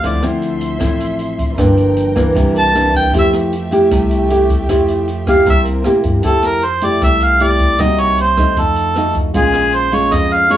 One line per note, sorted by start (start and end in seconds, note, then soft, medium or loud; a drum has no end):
0.03 0.77 D2 medium
0.03 0.79 D3 medium
0.03 0.20 F3 medium
0.03 0.20 C4 medium
0.03 0.20 E4 medium
0.03 1.57 E5 medium
0.03 1.58 C6 medium
0.03 kick medium
0.03 closed hi-hat medium
0.07 0.25 D5 medium
0.22 0.78 F3 medium
0.22 0.78 C4 medium
0.22 0.79 E4 medium
0.22 cross-stick medium
0.22 closed hi-hat soft
0.42 closed hi-hat soft
0.61 closed hi-hat soft
0.79 1.55 A1 medium
0.79 1.56 A2 medium
0.79 1.55 F3 medium
0.79 1.55 C4 medium
0.79 1.55 E4 medium
0.79 kick medium
0.79 cross-stick medium
0.79 closed hi-hat medium
1.00 closed hi-hat soft
1.19 closed hi-hat soft
1.38 kick medium
1.38 closed hi-hat soft
1.58 2.32 G1 medium
1.58 2.34 G2 soft
1.58 2.13 F3 soft
1.58 2.14 A#3 medium
1.58 2.14 D4 medium
1.58 3.12 A#4 medium
1.58 2.35 G5 medium
1.58 kick medium
1.58 cross-stick medium
1.58 closed hi-hat medium
1.77 closed hi-hat soft
1.97 closed hi-hat soft
2.16 2.71 E3 medium
2.16 2.72 A#3 medium
2.16 2.72 D4 medium
2.16 kick medium
2.16 cross-stick medium
2.16 closed hi-hat soft
2.35 3.10 C2 medium
2.35 3.11 C3 medium
2.35 3.13 D4 medium
2.35 6.20 E5 medium
2.35 kick medium
2.35 closed hi-hat medium
2.56 2.93 A5 loud
2.56 closed hi-hat soft
2.75 3.12 E3 medium
2.75 3.12 A#3 soft
2.75 3.13 D4 medium
2.75 cross-stick medium
2.75 closed hi-hat soft
2.94 3.14 G5 medium
2.94 kick medium
2.94 closed hi-hat soft
3.13 3.87 F2 medium
3.13 3.89 F3 medium
3.13 5.44 A3 medium
3.13 3.52 A3 medium
3.13 3.53 E4 medium
3.13 5.44 G4 medium
3.13 3.53 G4 medium
3.13 kick medium
3.13 closed hi-hat medium
3.18 3.29 E5 medium
3.33 cross-stick medium
3.33 closed hi-hat soft
3.53 closed hi-hat soft
3.71 4.27 A3 medium
3.71 4.27 E4 medium
3.71 4.27 G4 medium
3.71 closed hi-hat soft
3.91 4.65 C2 medium
3.91 4.67 C3 medium
3.91 kick medium
3.91 cross-stick medium
3.91 closed hi-hat medium
4.11 closed hi-hat soft
4.30 4.66 A3 soft
4.30 4.66 E4 medium
4.30 4.66 G4 medium
4.30 closed hi-hat soft
4.50 kick medium
4.50 closed hi-hat soft
4.69 5.42 F2 loud
4.69 5.45 F3 medium
4.69 5.08 A3 medium
4.69 5.08 E4 medium
4.69 5.08 G4 medium
4.69 kick medium
4.69 cross-stick medium
4.69 closed hi-hat medium
4.88 closed hi-hat soft
5.08 closed hi-hat soft
5.27 5.82 A#3 medium
5.27 5.83 E4 medium
5.27 5.83 G4 medium
5.27 5.46 F5 medium
5.27 kick medium
5.27 cross-stick medium
5.27 closed hi-hat soft
5.45 5.83 C2 medium
5.45 6.22 C3 medium
5.45 6.24 C4 medium
5.45 6.24 A#4 medium
5.45 kick medium
5.45 closed hi-hat medium
5.50 5.61 E5 medium
5.65 closed hi-hat soft
5.84 6.03 A2 medium
5.84 6.21 A#3 medium
5.84 6.21 E4 medium
5.84 6.22 G4 medium
5.84 cross-stick medium
5.84 closed hi-hat soft
6.04 6.22 G2 medium
6.04 kick medium
6.04 closed hi-hat soft
6.23 6.98 F2 medium
6.23 7.00 F3 soft
6.23 6.63 A3 medium
6.23 6.63 E4 medium
6.23 6.63 G4 medium
6.23 6.48 A4 medium
6.23 kick medium
6.23 closed hi-hat medium
6.43 6.66 A#4 medium
6.43 cross-stick medium
6.43 closed hi-hat soft
6.62 6.86 C5 medium
6.62 closed hi-hat soft
6.81 7.37 A3 medium
6.81 7.37 E4 medium
6.81 7.38 G4 medium
6.81 7.03 D5 medium
6.81 closed hi-hat soft
7.01 7.75 C2 medium
7.01 7.77 C3 soft
7.01 7.25 E5 medium
7.01 kick medium
7.01 cross-stick medium
7.01 closed hi-hat medium
7.20 7.44 F5 loud
7.20 closed hi-hat soft
7.40 7.76 A3 medium
7.40 7.76 E4 medium
7.40 7.76 G4 medium
7.40 7.82 D5 medium
7.40 closed hi-hat soft
7.59 kick soft
7.59 closed hi-hat soft
7.79 8.53 C2 medium
7.79 8.55 C3 medium
7.79 8.18 A#3 medium
7.79 8.18 D#4 medium
7.79 8.19 F#4 medium
7.79 8.02 D#5 medium
7.79 kick medium
7.79 cross-stick medium
7.79 closed hi-hat medium
7.98 8.19 C#5 medium
7.98 closed hi-hat soft
8.18 8.61 C5 medium
8.18 closed hi-hat soft
8.37 8.93 A3 medium
8.37 8.93 D#4 medium
8.37 kick medium
8.37 cross-stick medium
8.37 closed hi-hat soft
8.57 9.31 F2 medium
8.57 9.33 F3 medium
8.57 9.17 A4 medium
8.57 kick medium
8.57 closed hi-hat medium
8.76 closed hi-hat soft
8.95 9.32 A3 medium
8.95 9.32 D#4 medium
8.95 9.32 F#4 medium
8.95 cross-stick medium
8.95 closed hi-hat soft
9.15 kick medium
9.15 closed hi-hat soft
9.34 10.09 A#1 medium
9.34 10.10 A#2 medium
9.34 9.89 G#3 medium
9.34 9.90 C#4 medium
9.34 9.90 F4 medium
9.34 9.76 G#4 medium
9.34 kick medium
9.34 closed hi-hat medium
9.54 cross-stick medium
9.54 closed hi-hat soft
9.73 9.96 C5 medium
9.73 closed hi-hat soft
9.92 10.48 G#3 medium
9.92 10.48 C#4 medium
9.92 10.48 F4 medium
9.92 10.15 C#5 medium
9.92 closed hi-hat soft
10.11 10.57 F2 medium
10.11 10.34 D#5 medium
10.11 kick medium
10.11 cross-stick medium
10.11 closed hi-hat medium
10.31 10.54 F5 loud
10.31 closed hi-hat soft
10.49 10.57 G#3 soft
10.49 10.57 C#4 soft
10.49 10.57 F4 medium
10.49 10.57 C#5 loud
10.49 closed hi-hat soft